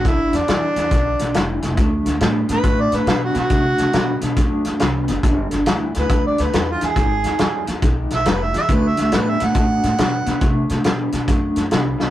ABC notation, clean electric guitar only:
X:1
M:4/4
L:1/8
Q:"Swing" 1/4=139
K:Dmix
V:1 name="Clean electric guitar" clef=bass
[G,,D,]2 [G,,E,] [G,,E,] [G,,D,]2 [G,,E,] [G,,E,] | [D,A,]2 [D,B,] [D,B,] [D,A,]2 [D,B,] [D,B,] | [D,A,]2 [D,B,] [D,B,] [D,A,]2 [D,B,] [D,B,] | [G,,D,]2 [G,,E,] [G,,E,] [G,,D,]2 [G,,E,] [G,,E,] |
[^G,,^D,]2 [G,,^E,] [G,,E,] [G,,D,]2 [G,,E,] [G,,E,] | [D,A,]2 [D,B,] [D,B,] [D,A,]2 [D,B,] [D,B,] | [D,A,]2 [D,B,] [D,B,] [D,A,]2 [D,B,] [D,B,] |]